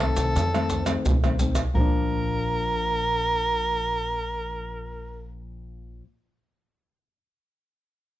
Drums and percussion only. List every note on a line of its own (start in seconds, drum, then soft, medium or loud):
0.00 pandeiro medium
0.00 tamborim medium
0.17 pandeiro medium
0.17 maracas medium
0.17 surdo soft
0.36 pandeiro medium
0.36 maracas medium
0.36 surdo medium
0.54 pandeiro soft
0.54 tamborim medium
0.54 maracas soft
0.70 pandeiro medium
0.70 maracas medium
0.70 surdo soft
0.86 pandeiro medium
0.86 tamborim medium
0.86 maracas medium
1.06 pandeiro medium
1.06 maracas medium
1.06 surdo loud
1.24 pandeiro soft
1.24 tamborim medium
1.24 maracas soft
1.39 pandeiro medium
1.39 maracas medium
1.39 surdo soft
1.55 pandeiro medium
1.55 tamborim medium
1.55 maracas medium
1.55 surdo soft
1.75 surdo loud